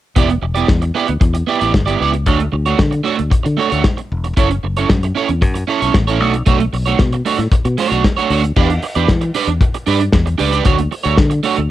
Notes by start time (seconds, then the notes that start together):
0.16 E1 B3 E4 G4 D5, kick, closed hi-hat
0.29 muted clean electric guitar stroke, closed hi-hat
0.42 E1, muted clean electric guitar stroke
0.55 B3 E4 G4 D5, closed hi-hat
0.68 E2, muted clean electric guitar stroke, kick, snare
0.82 muted clean electric guitar stroke, closed hi-hat
0.95 B3 E4 G4 D5
1.08 D2, muted clean electric guitar stroke, closed hi-hat
1.20 E2, muted clean electric guitar stroke, kick, closed hi-hat
1.34 muted clean electric guitar stroke, closed hi-hat
1.47 B3 E4 G4 D5
1.59 A1 B3 E4 G4 D5, closed hi-hat
1.73 G1, muted clean electric guitar stroke, kick, snare
1.86 B3 E4 G4 D5, closed hi-hat
2.00 C#2 B3 E4 G4 D5
2.13 muted clean electric guitar stroke, closed hi-hat
2.27 D2 A3 D4 F#4 C#5, kick, closed hi-hat
2.39 muted clean electric guitar stroke, closed hi-hat
2.52 D2, muted clean electric guitar stroke
2.66 A3 D4 F#4 C#5, closed hi-hat
2.78 D3, muted clean electric guitar stroke, kick, snare
2.91 muted clean electric guitar stroke, closed hi-hat
3.04 A3 D4 F#4 C#5
3.18 D2, muted clean electric guitar stroke, closed hi-hat
3.30 muted clean electric guitar stroke, kick, closed hi-hat
3.43 D3, muted clean electric guitar stroke, closed hi-hat
3.57 A3 D4 F#4 C#5
3.70 D2 A3 D4 F#4 C#5, closed hi-hat
3.84 muted clean electric guitar stroke, kick, snare
3.97 muted clean electric guitar stroke, closed hi-hat
4.12 E1
4.24 muted clean electric guitar stroke, closed hi-hat
4.37 F#1 C#4 E4 A4 C#5, kick, closed hi-hat
4.50 muted clean electric guitar stroke, closed hi-hat
4.63 F#1, muted clean electric guitar stroke
4.76 C#4 E4 A4 C#5, closed hi-hat
4.89 F#2, kick, snare
5.03 muted clean electric guitar stroke, closed hi-hat
5.15 C#4 E4 A4 C#5
5.29 E2, muted clean electric guitar stroke, closed hi-hat
5.41 F#2, muted clean electric guitar stroke, kick, closed hi-hat
5.54 muted clean electric guitar stroke, closed hi-hat
5.67 C#4 E4 A4 C#5
5.81 B1 C#4 E4 A4 C#5, closed hi-hat
5.94 A1, muted clean electric guitar stroke, kick, snare
6.07 C#4 E4 A4 C#5, closed hi-hat
6.20 B1 A3 D4 F#4 C#5
6.34 muted clean electric guitar stroke, closed hi-hat
6.46 B1 A3 D4 F#4 C#5, kick, closed hi-hat
6.59 muted clean electric guitar stroke, closed hi-hat
6.73 B1, muted clean electric guitar stroke, open hi-hat
6.86 A3 D4 F#4 C#5, closed hi-hat
6.99 B2, muted clean electric guitar stroke, kick, snare
7.13 muted clean electric guitar stroke, closed hi-hat
7.25 A3 D4 F#4 C#5, open hi-hat
7.39 A2, muted clean electric guitar stroke, snare, closed hi-hat
7.52 muted fingered electric bass stroke, muted clean electric guitar stroke, kick, closed hi-hat
7.65 B2, muted clean electric guitar stroke, closed hi-hat
7.78 A3 D4 F#4 C#5, open hi-hat
7.90 B1 A3 D4 F#4 C#5, closed hi-hat
8.04 muted clean electric guitar stroke, kick, snare
8.17 A3 D4 F#4 C#5, closed hi-hat
8.30 D2 A3 D4 F#4 C#5, open hi-hat
8.43 muted clean electric guitar stroke, closed hi-hat
8.56 E2 D4 G4 B4 D5, kick, crash
8.69 muted clean electric guitar stroke, closed hi-hat
8.82 muted clean electric guitar stroke, open hi-hat
8.95 E2 D4 G4 B4 D5, closed hi-hat
9.08 E3, muted clean electric guitar stroke, kick, snare
9.21 muted clean electric guitar stroke, closed hi-hat
9.34 D4 G4 B4 D5, open hi-hat
9.47 E2, muted clean electric guitar stroke, closed hi-hat
9.61 muted clean electric guitar stroke, kick, closed hi-hat
9.74 muted clean electric guitar stroke, closed hi-hat
9.86 G2 D4 G4 B4 D5, open hi-hat
10.00 muted clean electric guitar stroke, closed hi-hat
10.12 E2, muted clean electric guitar stroke, kick, snare
10.26 muted clean electric guitar stroke, closed hi-hat
10.38 C#2 D4 G4 B4 D5, open hi-hat
10.52 D4 G4 B4 D5, closed hi-hat
10.64 D2 A3 D4 F#4 C#5, kick, closed hi-hat
10.79 muted clean electric guitar stroke, closed hi-hat
10.91 muted clean electric guitar stroke, open hi-hat
11.03 D2 A3 D4 F#4 C#5, closed hi-hat
11.17 D3, muted clean electric guitar stroke, kick, snare
11.30 muted clean electric guitar stroke, closed hi-hat
11.43 A3 D4 F#4 C#5, open hi-hat
11.57 D2, muted clean electric guitar stroke, closed hi-hat